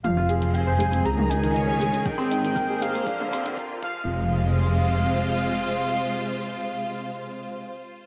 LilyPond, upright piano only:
\new Staff \with { instrumentName = "Upright piano" } { \time 4/4 \key f \minor \tempo 4 = 119 f16 f'16 aes'16 f16 f''16 c''16 aes16 c'16 aes'16 ees16 ees'16 ees16 ees''16 des''16 aes16 des'16 | ees16 c'16 ees'16 ees16 bes'16 aes'16 aes16 bes16 d'16 d16 c'16 d16 bes'16 f'16 f8~ | f8 r2. r8 | r1 | }